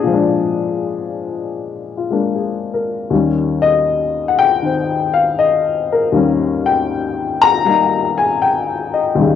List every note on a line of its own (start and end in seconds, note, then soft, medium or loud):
0.00 3.08 A#2 medium
0.00 0.10 D3 medium
0.00 0.07 F3 soft
0.00 3.12 C4 soft
0.00 0.12 D4 medium
0.00 1.32 G#4 medium
0.00 3.12 D5 medium
0.00 3.12 D#5 medium
0.00 3.12 F5 loud
0.07 3.10 F3 soft
0.07 2.09 G#3 soft
0.14 2.11 D4 medium
1.97 2.50 F4 soft
2.10 3.10 G#3 soft
2.10 3.11 A#3 soft
2.10 3.11 D4 soft
2.35 2.95 G#4 soft
2.74 3.26 A#4 soft
3.10 6.11 D#2 soft
3.10 4.61 D#3 soft
3.10 6.13 G3 soft
3.15 6.15 C#4 soft
3.62 4.30 D#5 medium
4.28 4.38 F#5 medium
4.39 5.16 G5 medium
4.62 6.12 D#3 soft
4.62 6.15 C4 soft
5.14 5.36 F5 medium
5.39 5.92 D#5 medium
5.93 6.13 A#4 medium
6.12 9.13 D#2 medium
6.12 9.15 D#3 soft
6.12 7.64 G3 soft
6.17 9.19 C#4 medium
6.66 7.44 G5 medium
7.42 8.20 A#5 loud
7.65 9.17 G3 soft
7.65 9.18 A#3 soft
7.65 9.19 D#4 soft
8.18 8.42 G#5 medium
8.42 8.90 G5 medium
8.94 9.16 D#5 medium
9.15 9.36 D#2 medium
9.15 9.36 D#3 soft
9.15 9.36 G3 soft
9.20 9.36 C#3 medium